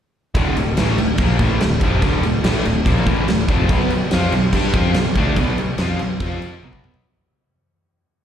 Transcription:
0.35 D1 D2 A2 D3, kick, crash
0.56 D1 D2 A2, crash
0.77 A1 A2 E3 A3, snare, crash
0.98 D1 D2 A2, crash
1.18 A#1 A#2 F3, kick, crash
1.22 A#3
1.39 A1 A2 E3 A3, kick, crash
1.60 D1 D2 A2, snare, crash
1.81 F1 F2 C3 F3, kick, crash
2.02 D1 D2 A2 D3, kick, crash
2.23 D1 D2 A2, crash
2.44 A1 A2 E3 A3, snare, crash
2.65 D1 D2 A2, crash
2.86 A#1 A#2 F3 A#3, kick, crash
3.06 A1 A2 E3 A3, kick, crash
3.28 D1 D2 A2, snare, crash
3.49 F1 F2 C3 F3, kick, crash
3.69 B1 B2 F#3 B3, kick, crash
3.89 B1 B2 F#3, crash
4.11 F2 F3 C4 F4, snare, crash
4.32 B1 B2 F#3, crash
4.52 G2 G3 D4, kick, crash
4.56 G4
4.74 F2 F3 C4 F4, kick, crash
4.94 B1 B2 F#3, snare, crash
5.15 D2 D3 A3 D4, kick, crash
5.37 B1 B2 F#3 B3, kick, crash
5.58 B1 B2 F#3, crash
5.78 F2 F3 C4 F4, snare, crash
5.99 B1 B2 F#3, crash
6.20 F2 F3 C4 F4, kick, crash
6.42 crash
6.63 B1 B2 F#3 B3, high tom
6.73 kick
6.84 mid tom
6.94 floor tom

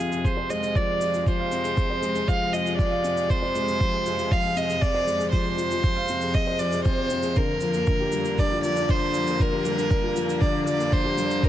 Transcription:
Already playing: F2 C3 F3 G#3 F4 G#4 F5
0.00 C4
0.12 G#4, shaker
0.24 G#4 C5, kick, shaker
0.37 C5
0.50 G#3 D#5, shaker
0.63 G#4, shaker
0.75 F3 D5, kick, shaker
1.01 F4, shaker
1.14 F4, shaker
1.26 F3 C5, kick, shaker
1.40 F5
1.52 C4, shaker
1.65 G#4, shaker
1.77 kick, shaker
1.90 C5
2.02 G#3, shaker
2.15 G#4, shaker
2.27 F3 F5, kick, shaker
2.53 F4 D#5, shaker
2.66 F4, shaker
2.77 F3 D5, kick, shaker
2.91 F5
3.04 C4, shaker
3.16 G#4, shaker
3.30 G#4 C5, kick, shaker
3.42 C5
3.55 G#3, shaker
3.67 G#4, shaker
3.80 F3, kick, shaker
4.06 F4, shaker
4.18 F4, shaker
4.31 F3 F5, kick, shaker
4.43 F5
4.56 C4 D#5, shaker
4.69 G#4, shaker
4.81 G#4 D5, kick, shaker
4.94 C5
5.07 G#3, shaker
5.20 G#4, shaker
5.32 F3 C5, kick, shaker
5.58 F4, shaker
5.71 F4, shaker
5.84 F3, kick, shaker
5.96 F5
6.08 C4, shaker
6.21 G#4, shaker
6.34 G#4 D#5, kick, shaker
6.47 C5
6.59 F3 D5, shaker
6.72 G#4, shaker
6.85 C4 C5, kick, shaker
7.10 C4, shaker
7.23 G#4, shaker
7.36 D3 A#3 A#4, kick, shaker
7.61 F3, shaker
7.74 A#3, shaker
7.87 D3, kick, shaker
8.00 G4
8.12 G3, shaker
8.25 D4, shaker
8.38 D4 D5, kick, shaker
8.51 F4
8.64 F3 D5, shaker
8.76 D4, shaker
8.89 D3 C5, kick, shaker
9.14 F3, shaker
9.27 A#3, shaker
9.40 D3 A#4, kick, shaker
9.53 G4
9.65 G3, shaker
9.78 D4, shaker
9.90 D4, kick, shaker
10.03 F4
10.15 F3, shaker
10.28 D4, shaker
10.41 D3 D5, kick, shaker
10.66 F3 D5, shaker
10.79 A#3, shaker
10.91 D3 C5, kick, shaker
11.04 G4
11.17 G3, shaker
11.30 D4, shaker
11.42 D4 A#4, kick, shaker

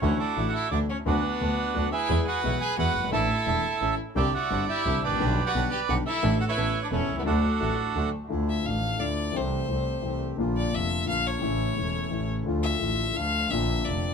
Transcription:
0.02 D2 D3 E3 A3 C#4 D4 E4 F#4 C#5
0.19 D4 F#4 A4 D5
0.36 A1 A2 E3 A3 D4 E4 F#4
0.49 F#4 F#5
0.54 E4 E5
0.71 D2 D3 E3 A3 D4 E4 F#4 D5
0.90 C#4 C#5
1.05 D2 D3 F#3 B3 D4 F#4 B4
1.40 D2 D3 F#3 B3 D4 F#4
1.74 D2 D3 F#3 B3 D4 F#4
1.92 E4 G#4 B4 E5
2.09 E2 E3 G#3 B3 E4 G#4
2.28 F#4 B4 F#5
2.43 B1 B2 E3 G#3 B3 E4 G#4
2.61 G#4 G#5
2.77 E2 E3 G#3 B3 E4 F#4 G#4 B4 F#5
2.96 F#1 G1
3.04 G1
3.08 G#1 A1 A2 E3 A3 D4 A4
3.12 A1 E4 A4 E5
3.46 E1 E2 E3 A3 D4 E4 A4
3.81 A1 A2 E3 A3 C#4 E4 A4
4.15 C2 C3 D3 G3 C4 D4 E4 G4 C5 D5 E5 G5
4.34 F#4 D5 F#5
4.50 G1 G2 D3 G3 C4 D4 E4 C5
4.69 E4 G4 E5
4.85 C2 C3 D3 G3 C4 D4 E4 C5
5.03 G#1 A1 D4 G4 B4 D5
5.11 A1
5.16 A#1 D3 D4
5.20 B1 B2 G3 B3 G4 B4
5.46 F#4 B4 D5 F#5
5.54 B1 B2 D3 G3 B3 D4 G4 B4
5.71 G4 G5
5.89 B1 B2 D3 G3 B3 D4 F#4 G4 B4 F#5
6.06 E4 A4 E5
6.23 A1 A2 E3 A3 D4 E4 A4
6.41 F#4 F#5
6.49 E4 B4 C#5 E5
6.57 A1 A2 E3 B3 C#4 A4
6.83 D4 D5
6.91 E1 E2 E3 B3 C#4 E4 A4 C#5
7.09 B1 C2
7.17 C2 B3 B4
7.21 C#2 D3 F#3 A3
7.26 D2 A3 D4 F#4 A4
7.60 A1 A2 F#3 A3 D4 F#4 A4
7.95 D2 D3 F#3 A3 D4 F#4 A4
8.28 D2 D3 A3 D4 E4 F4
8.49 E5
8.63 A1 A2 E3 F3 A3 D4 F5
8.97 D2 D3 A3 D4 E4 D5
9.01 F4
9.31 C2 C3 E3 A3 C4 G4
9.36 G4 C5
9.67 C2 C3 E3 A3 C4 G4
10.01 C2 C3 E3 A3 C4 G4
10.36 A#1 A#2 D3 F3 A#3 D4 F4
10.57 D5
10.70 F1 F2 D3 F3 A#3 D4 F4
10.74 F4 E5
11.05 A#1 A#2 D3 F3 A#3 D4 F4 F5
11.09 F4
11.27 C#5
11.39 A1 A2 C#3 E3 A3 C#4 E4
11.74 E1 E2 C#3 E3 A3 C#4 E4
11.78 E4
12.09 A1 A2 C#3 E3 A3 C#4 E4
12.13 E4
12.43 D2 D3 F3 A3 D4 F4
12.48 F4
12.63 E5
12.79 A1 A2 D3 F3 A3 D4 F4
12.83 F4
13.13 D2 D3 F3 A3 D4 F4 F5
13.18 F4
13.49 A#1 A#2 D3 A#3 C4 D4 F4 E5
13.83 F1 F2 D3 A#3 C4 D4 F4 D5

